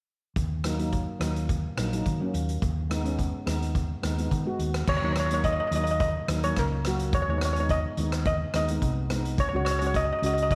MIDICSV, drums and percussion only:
0, 0, Header, 1, 2, 480
1, 0, Start_track
1, 0, Tempo, 563380
1, 314, Time_signature, 4, 2, 24, 8
1, 8989, End_track
2, 0, Start_track
2, 0, Title_t, "Drums"
2, 308, Note_on_c, 9, 36, 87
2, 311, Note_on_c, 9, 42, 53
2, 393, Note_off_c, 9, 36, 0
2, 396, Note_off_c, 9, 42, 0
2, 546, Note_on_c, 9, 37, 68
2, 546, Note_on_c, 9, 42, 66
2, 632, Note_off_c, 9, 37, 0
2, 632, Note_off_c, 9, 42, 0
2, 677, Note_on_c, 9, 42, 54
2, 762, Note_off_c, 9, 42, 0
2, 788, Note_on_c, 9, 42, 51
2, 790, Note_on_c, 9, 36, 66
2, 873, Note_off_c, 9, 42, 0
2, 875, Note_off_c, 9, 36, 0
2, 1029, Note_on_c, 9, 37, 64
2, 1029, Note_on_c, 9, 42, 61
2, 1115, Note_off_c, 9, 37, 0
2, 1115, Note_off_c, 9, 42, 0
2, 1160, Note_on_c, 9, 42, 48
2, 1245, Note_off_c, 9, 42, 0
2, 1271, Note_on_c, 9, 36, 91
2, 1273, Note_on_c, 9, 42, 53
2, 1357, Note_off_c, 9, 36, 0
2, 1358, Note_off_c, 9, 42, 0
2, 1513, Note_on_c, 9, 37, 74
2, 1513, Note_on_c, 9, 42, 72
2, 1598, Note_off_c, 9, 37, 0
2, 1598, Note_off_c, 9, 42, 0
2, 1644, Note_on_c, 9, 42, 60
2, 1729, Note_off_c, 9, 42, 0
2, 1753, Note_on_c, 9, 36, 71
2, 1754, Note_on_c, 9, 42, 54
2, 1838, Note_off_c, 9, 36, 0
2, 1839, Note_off_c, 9, 42, 0
2, 1995, Note_on_c, 9, 42, 69
2, 2081, Note_off_c, 9, 42, 0
2, 2120, Note_on_c, 9, 42, 56
2, 2206, Note_off_c, 9, 42, 0
2, 2233, Note_on_c, 9, 36, 85
2, 2233, Note_on_c, 9, 42, 52
2, 2319, Note_off_c, 9, 36, 0
2, 2319, Note_off_c, 9, 42, 0
2, 2479, Note_on_c, 9, 37, 68
2, 2479, Note_on_c, 9, 42, 63
2, 2564, Note_off_c, 9, 37, 0
2, 2564, Note_off_c, 9, 42, 0
2, 2603, Note_on_c, 9, 42, 48
2, 2688, Note_off_c, 9, 42, 0
2, 2715, Note_on_c, 9, 36, 69
2, 2718, Note_on_c, 9, 42, 50
2, 2800, Note_off_c, 9, 36, 0
2, 2804, Note_off_c, 9, 42, 0
2, 2957, Note_on_c, 9, 37, 66
2, 2957, Note_on_c, 9, 42, 65
2, 3043, Note_off_c, 9, 37, 0
2, 3043, Note_off_c, 9, 42, 0
2, 3087, Note_on_c, 9, 42, 45
2, 3172, Note_off_c, 9, 42, 0
2, 3195, Note_on_c, 9, 36, 80
2, 3197, Note_on_c, 9, 42, 50
2, 3281, Note_off_c, 9, 36, 0
2, 3282, Note_off_c, 9, 42, 0
2, 3437, Note_on_c, 9, 37, 66
2, 3437, Note_on_c, 9, 42, 63
2, 3522, Note_off_c, 9, 37, 0
2, 3522, Note_off_c, 9, 42, 0
2, 3564, Note_on_c, 9, 42, 50
2, 3650, Note_off_c, 9, 42, 0
2, 3675, Note_on_c, 9, 36, 74
2, 3676, Note_on_c, 9, 42, 47
2, 3760, Note_off_c, 9, 36, 0
2, 3761, Note_off_c, 9, 42, 0
2, 3915, Note_on_c, 9, 42, 61
2, 4000, Note_off_c, 9, 42, 0
2, 4041, Note_on_c, 9, 37, 66
2, 4041, Note_on_c, 9, 42, 50
2, 4126, Note_off_c, 9, 37, 0
2, 4126, Note_off_c, 9, 42, 0
2, 4152, Note_on_c, 9, 49, 84
2, 4154, Note_on_c, 9, 36, 95
2, 4238, Note_off_c, 9, 49, 0
2, 4239, Note_off_c, 9, 36, 0
2, 4394, Note_on_c, 9, 37, 70
2, 4394, Note_on_c, 9, 42, 75
2, 4479, Note_off_c, 9, 37, 0
2, 4479, Note_off_c, 9, 42, 0
2, 4521, Note_on_c, 9, 42, 53
2, 4607, Note_off_c, 9, 42, 0
2, 4633, Note_on_c, 9, 42, 54
2, 4634, Note_on_c, 9, 36, 69
2, 4718, Note_off_c, 9, 42, 0
2, 4719, Note_off_c, 9, 36, 0
2, 4872, Note_on_c, 9, 42, 77
2, 4957, Note_off_c, 9, 42, 0
2, 4999, Note_on_c, 9, 42, 55
2, 5084, Note_off_c, 9, 42, 0
2, 5111, Note_on_c, 9, 42, 54
2, 5114, Note_on_c, 9, 36, 96
2, 5196, Note_off_c, 9, 42, 0
2, 5199, Note_off_c, 9, 36, 0
2, 5354, Note_on_c, 9, 37, 79
2, 5354, Note_on_c, 9, 42, 77
2, 5440, Note_off_c, 9, 37, 0
2, 5440, Note_off_c, 9, 42, 0
2, 5482, Note_on_c, 9, 42, 59
2, 5567, Note_off_c, 9, 42, 0
2, 5593, Note_on_c, 9, 37, 62
2, 5593, Note_on_c, 9, 42, 55
2, 5594, Note_on_c, 9, 36, 77
2, 5678, Note_off_c, 9, 37, 0
2, 5678, Note_off_c, 9, 42, 0
2, 5679, Note_off_c, 9, 36, 0
2, 5834, Note_on_c, 9, 37, 65
2, 5834, Note_on_c, 9, 42, 67
2, 5919, Note_off_c, 9, 37, 0
2, 5919, Note_off_c, 9, 42, 0
2, 5960, Note_on_c, 9, 42, 54
2, 6045, Note_off_c, 9, 42, 0
2, 6073, Note_on_c, 9, 42, 54
2, 6075, Note_on_c, 9, 36, 101
2, 6158, Note_off_c, 9, 42, 0
2, 6160, Note_off_c, 9, 36, 0
2, 6317, Note_on_c, 9, 37, 78
2, 6317, Note_on_c, 9, 42, 67
2, 6402, Note_off_c, 9, 37, 0
2, 6402, Note_off_c, 9, 42, 0
2, 6442, Note_on_c, 9, 42, 50
2, 6527, Note_off_c, 9, 42, 0
2, 6553, Note_on_c, 9, 42, 51
2, 6555, Note_on_c, 9, 36, 80
2, 6638, Note_off_c, 9, 42, 0
2, 6640, Note_off_c, 9, 36, 0
2, 6793, Note_on_c, 9, 42, 69
2, 6879, Note_off_c, 9, 42, 0
2, 6921, Note_on_c, 9, 37, 67
2, 6921, Note_on_c, 9, 42, 52
2, 7006, Note_off_c, 9, 37, 0
2, 7006, Note_off_c, 9, 42, 0
2, 7032, Note_on_c, 9, 42, 50
2, 7035, Note_on_c, 9, 36, 99
2, 7118, Note_off_c, 9, 42, 0
2, 7120, Note_off_c, 9, 36, 0
2, 7274, Note_on_c, 9, 37, 67
2, 7274, Note_on_c, 9, 42, 72
2, 7359, Note_off_c, 9, 37, 0
2, 7359, Note_off_c, 9, 42, 0
2, 7399, Note_on_c, 9, 42, 55
2, 7484, Note_off_c, 9, 42, 0
2, 7514, Note_on_c, 9, 36, 79
2, 7515, Note_on_c, 9, 42, 58
2, 7599, Note_off_c, 9, 36, 0
2, 7601, Note_off_c, 9, 42, 0
2, 7754, Note_on_c, 9, 37, 63
2, 7754, Note_on_c, 9, 42, 65
2, 7840, Note_off_c, 9, 37, 0
2, 7840, Note_off_c, 9, 42, 0
2, 7883, Note_on_c, 9, 42, 54
2, 7969, Note_off_c, 9, 42, 0
2, 7994, Note_on_c, 9, 36, 97
2, 7996, Note_on_c, 9, 42, 53
2, 8079, Note_off_c, 9, 36, 0
2, 8081, Note_off_c, 9, 42, 0
2, 8233, Note_on_c, 9, 37, 70
2, 8233, Note_on_c, 9, 42, 73
2, 8318, Note_off_c, 9, 37, 0
2, 8318, Note_off_c, 9, 42, 0
2, 8362, Note_on_c, 9, 42, 57
2, 8447, Note_off_c, 9, 42, 0
2, 8472, Note_on_c, 9, 36, 80
2, 8474, Note_on_c, 9, 42, 56
2, 8557, Note_off_c, 9, 36, 0
2, 8560, Note_off_c, 9, 42, 0
2, 8717, Note_on_c, 9, 42, 77
2, 8802, Note_off_c, 9, 42, 0
2, 8842, Note_on_c, 9, 42, 55
2, 8927, Note_off_c, 9, 42, 0
2, 8952, Note_on_c, 9, 36, 94
2, 8954, Note_on_c, 9, 42, 59
2, 8989, Note_off_c, 9, 36, 0
2, 8989, Note_off_c, 9, 42, 0
2, 8989, End_track
0, 0, End_of_file